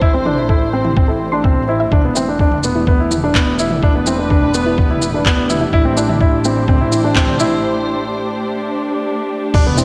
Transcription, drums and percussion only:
0.02 kick loud
0.25 mid tom medium
0.49 kick medium
0.84 mid tom medium
0.97 kick loud
1.44 kick loud
1.44 mid tom medium
1.92 kick loud
1.92 mid tom medium
2.16 shaker medium
2.39 kick medium
2.51 mid tom medium
2.63 shaker medium
2.87 kick loud
3.11 mid tom medium
3.11 shaker medium
3.35 kick medium
3.35 clap medium
3.59 shaker medium
3.71 mid tom medium
3.83 kick loud
4.06 shaker medium
4.30 kick medium
4.30 mid tom medium
4.54 shaker medium
4.78 kick loud
4.90 mid tom medium
5.02 shaker medium
5.25 kick medium
5.25 clap medium
5.50 mid tom medium
5.50 shaker medium
5.73 kick loud
5.97 shaker medium
6.09 mid tom medium
6.21 kick medium
6.45 shaker medium
6.68 kick loud
6.68 mid tom medium
6.92 shaker medium
7.16 kick medium
7.16 clap medium
7.27 mid tom medium
7.40 shaker medium
9.54 kick loud
9.54 crash loud
9.66 mid tom medium
9.78 shaker medium

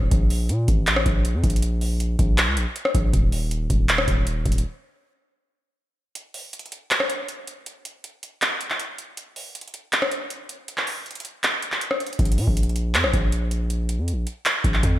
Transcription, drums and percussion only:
0.11 kick loud
0.11 closed hi-hat medium
0.30 open hi-hat medium
0.49 closed hi-hat medium
0.68 kick loud
0.68 closed hi-hat medium
0.87 clap loud
0.87 closed hi-hat medium
0.96 cross-stick loud
1.06 kick loud
1.06 closed hi-hat medium
1.25 closed hi-hat medium
1.44 kick medium
1.44 closed hi-hat medium
1.50 closed hi-hat medium
1.56 closed hi-hat medium
1.62 closed hi-hat medium
1.81 open hi-hat medium
2.00 closed hi-hat medium
2.19 kick loud
2.19 closed hi-hat medium
2.38 clap loud
2.38 closed hi-hat medium
2.57 closed hi-hat medium
2.76 closed hi-hat medium
2.85 cross-stick medium
2.95 kick medium
2.95 closed hi-hat medium
3.13 kick loud
3.13 closed hi-hat medium
3.32 open hi-hat medium
3.51 closed hi-hat medium
3.70 kick loud
3.70 closed hi-hat medium
3.89 clap loud
3.89 closed hi-hat medium
3.98 cross-stick loud
4.08 kick loud
4.08 closed hi-hat medium
4.27 closed hi-hat medium
4.46 kick medium
4.46 closed hi-hat medium
4.52 closed hi-hat medium
4.58 closed hi-hat medium
6.15 closed hi-hat medium
6.34 open hi-hat medium
6.53 closed hi-hat medium
6.59 closed hi-hat medium
6.66 closed hi-hat soft
6.72 closed hi-hat medium
6.91 clap loud
6.91 closed hi-hat medium
7.00 cross-stick loud
7.10 closed hi-hat medium
7.29 closed hi-hat medium
7.47 closed hi-hat medium
7.66 closed hi-hat medium
7.85 closed hi-hat medium
8.04 closed hi-hat medium
8.23 closed hi-hat medium
8.42 clap loud
8.42 closed hi-hat medium
8.61 closed hi-hat medium
8.70 clap medium
8.80 closed hi-hat medium
8.98 closed hi-hat medium
9.17 closed hi-hat medium
9.36 open hi-hat medium
9.55 closed hi-hat medium
9.61 closed hi-hat medium
9.68 closed hi-hat soft
9.74 closed hi-hat medium
9.93 clap loud
9.93 closed hi-hat medium
10.02 cross-stick loud
10.11 closed hi-hat medium
10.30 closed hi-hat medium
10.49 closed hi-hat medium
10.68 closed hi-hat medium
10.78 clap medium
10.87 open hi-hat medium
11.06 closed hi-hat soft
11.11 closed hi-hat medium
11.15 closed hi-hat medium
11.20 closed hi-hat medium
11.25 closed hi-hat medium
11.44 clap loud
11.44 closed hi-hat medium
11.62 closed hi-hat medium
11.72 clap medium
11.81 closed hi-hat medium
11.91 cross-stick medium
12.00 closed hi-hat soft
12.07 closed hi-hat medium
12.13 closed hi-hat medium
12.19 kick loud
12.19 closed hi-hat medium
12.25 closed hi-hat medium
12.32 closed hi-hat medium
12.38 open hi-hat medium
12.47 kick loud
12.57 closed hi-hat medium
12.63 closed hi-hat medium
12.69 closed hi-hat soft
12.76 closed hi-hat medium
12.95 clap loud
12.95 closed hi-hat medium
13.04 cross-stick loud
13.13 kick loud
13.13 closed hi-hat medium
13.32 closed hi-hat medium
13.51 closed hi-hat medium
13.70 closed hi-hat medium
13.89 closed hi-hat medium
14.08 closed hi-hat medium
14.27 closed hi-hat medium
14.46 clap loud
14.46 closed hi-hat medium
14.64 kick loud
14.64 closed hi-hat medium
14.74 clap medium
14.83 kick medium
14.83 closed hi-hat medium

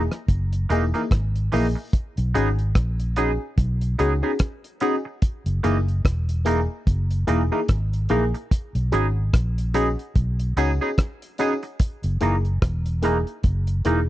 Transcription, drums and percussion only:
0.12 cross-stick medium
0.12 closed hi-hat soft
0.28 kick loud
0.28 closed hi-hat medium
0.53 closed hi-hat medium
0.70 closed hi-hat medium
0.94 closed hi-hat soft
1.11 kick loud
1.11 cross-stick loud
1.11 closed hi-hat medium
1.36 closed hi-hat soft
1.52 open hi-hat medium
1.93 kick loud
1.93 closed hi-hat loud
2.17 closed hi-hat medium
2.35 closed hi-hat medium
2.59 closed hi-hat soft
2.75 kick loud
2.75 cross-stick loud
2.75 closed hi-hat medium
3.00 closed hi-hat medium
3.16 closed hi-hat medium
3.58 kick loud
3.58 closed hi-hat medium
3.81 closed hi-hat medium
3.99 closed hi-hat medium
4.39 kick loud
4.39 cross-stick loud
4.39 closed hi-hat medium
4.64 closed hi-hat soft
4.80 closed hi-hat medium
5.22 kick loud
5.22 closed hi-hat medium
5.46 closed hi-hat medium
5.64 closed hi-hat medium
5.88 closed hi-hat soft
6.05 kick loud
6.05 cross-stick loud
6.05 closed hi-hat medium
6.29 closed hi-hat medium
6.46 closed hi-hat medium
6.87 kick loud
6.87 closed hi-hat medium
7.11 closed hi-hat medium
7.28 closed hi-hat medium
7.68 kick loud
7.68 cross-stick loud
7.68 closed hi-hat medium
7.93 closed hi-hat soft
8.09 closed hi-hat medium
8.35 closed hi-hat soft
8.51 kick loud
8.51 closed hi-hat loud
8.75 closed hi-hat medium
8.92 closed hi-hat medium
9.33 kick loud
9.33 cross-stick loud
9.33 closed hi-hat medium
9.58 closed hi-hat medium
9.74 closed hi-hat medium
9.99 closed hi-hat soft
10.16 kick loud
10.16 closed hi-hat medium
10.40 closed hi-hat medium
10.57 closed hi-hat medium
10.98 kick loud
10.98 cross-stick loud
10.98 closed hi-hat medium
11.22 closed hi-hat soft
11.38 closed hi-hat medium
11.63 closed hi-hat soft
11.80 kick loud
11.80 closed hi-hat loud
12.03 closed hi-hat medium
12.21 closed hi-hat medium
12.45 closed hi-hat soft
12.62 kick loud
12.62 cross-stick loud
12.62 closed hi-hat medium
12.86 closed hi-hat medium
13.03 closed hi-hat medium
13.27 closed hi-hat soft
13.44 kick loud
13.44 closed hi-hat medium
13.67 closed hi-hat soft
13.85 closed hi-hat medium

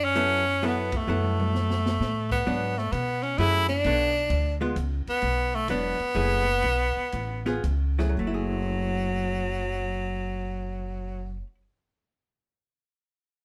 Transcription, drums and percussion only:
0.15 closed hi-hat medium
0.62 open hi-hat soft
0.92 kick medium
0.92 ride medium
1.24 high tom medium
1.40 high tom medium
1.55 snare medium
1.70 snare medium
1.86 snare medium
2.01 snare medium
2.31 kick medium
2.31 crash medium
2.78 snare soft
2.92 hi-hat pedal medium
2.92 ride medium
3.23 ride soft
3.38 ride medium
3.70 snare soft
3.84 ride medium
4.30 ride medium
4.76 hi-hat pedal medium
4.76 ride medium
5.07 ride soft
5.22 ride medium
5.68 hi-hat pedal soft
5.68 ride medium
6.00 ride soft
6.15 ride soft
6.62 ride medium
7.12 hi-hat pedal soft
7.12 ride medium
7.46 snare soft
7.46 ride soft
7.64 hi-hat pedal medium
7.64 ride medium
7.99 snare medium

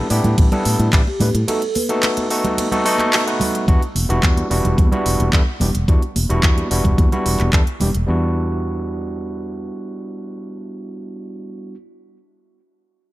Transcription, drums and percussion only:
0.10 open hi-hat loud
0.10 muted conga medium
0.10 cabasa loud
0.24 closed hi-hat soft
0.24 low conga medium
0.24 cabasa medium
0.38 kick loud
0.38 closed hi-hat medium
0.38 ride medium
0.38 high conga medium
0.38 cabasa soft
0.52 closed hi-hat soft
0.52 muted conga medium
0.52 low conga medium
0.65 open hi-hat loud
0.65 cabasa medium
0.79 closed hi-hat soft
0.79 high conga medium
0.79 cabasa medium
0.93 kick loud
0.93 clap loud
0.93 closed hi-hat medium
0.93 ride medium
0.93 cabasa soft
1.07 muted conga medium
1.20 open hi-hat loud
1.20 high conga medium
1.20 low conga loud
1.20 cabasa medium
1.35 closed hi-hat medium
1.35 cabasa medium
1.48 closed hi-hat medium
1.48 ride medium
1.48 muted conga medium
1.48 cabasa soft
1.62 closed hi-hat soft
1.75 open hi-hat loud
1.75 high conga medium
1.75 cabasa loud
1.89 closed hi-hat soft
1.89 cabasa medium
2.02 clap loud
2.02 closed hi-hat medium
2.02 ride medium
2.02 muted conga medium
2.02 cabasa soft
2.17 closed hi-hat medium
2.17 high conga medium
2.30 open hi-hat loud
2.30 cabasa medium
2.44 closed hi-hat soft
2.44 muted conga medium
2.44 low conga medium
2.44 cabasa medium
2.58 closed hi-hat medium
2.58 ride medium
2.58 high conga medium
2.58 cabasa soft
2.72 closed hi-hat soft
2.72 low conga medium
2.85 open hi-hat loud
2.85 cabasa medium
2.98 clap soft
2.98 closed hi-hat soft
2.98 muted conga medium
2.98 high conga medium
2.98 cabasa medium
3.13 clap loud
3.13 open hi-hat medium
3.13 ride medium
3.13 cabasa soft
3.28 closed hi-hat soft
3.40 open hi-hat loud
3.40 muted conga medium
3.40 high conga medium
3.40 low conga loud
3.40 cabasa loud
3.55 closed hi-hat medium
3.55 cabasa medium
3.68 kick loud
3.68 closed hi-hat medium
3.82 closed hi-hat soft
3.95 open hi-hat loud
3.95 high conga medium
4.10 closed hi-hat soft
4.23 kick loud
4.23 clap loud
4.23 closed hi-hat medium
4.37 closed hi-hat medium
4.37 high conga medium
4.51 open hi-hat loud
4.65 closed hi-hat soft
4.65 low conga medium
4.78 kick loud
4.78 closed hi-hat medium
4.78 high conga medium
4.92 closed hi-hat soft
4.92 low conga medium
5.06 open hi-hat loud
5.20 closed hi-hat soft
5.20 high conga medium
5.33 kick loud
5.33 clap loud
5.33 closed hi-hat medium
5.60 open hi-hat loud
5.60 high conga medium
5.60 low conga medium
5.75 closed hi-hat medium
5.88 kick loud
5.88 closed hi-hat medium
6.02 closed hi-hat soft
6.16 open hi-hat loud
6.16 high conga medium
6.30 closed hi-hat soft
6.43 kick loud
6.43 clap loud
6.43 closed hi-hat medium
6.57 closed hi-hat soft
6.57 high conga medium
6.71 open hi-hat loud
6.84 kick medium
6.84 closed hi-hat soft
6.84 low conga medium
6.98 kick loud
6.98 closed hi-hat medium
6.98 high conga medium
7.12 closed hi-hat soft
7.12 low conga medium
7.26 open hi-hat loud
7.40 clap soft
7.40 closed hi-hat soft
7.40 high conga medium
7.53 kick loud
7.53 clap loud
7.53 closed hi-hat medium
7.67 closed hi-hat soft
7.80 open hi-hat loud
7.80 high conga medium
7.80 low conga medium
7.95 closed hi-hat soft

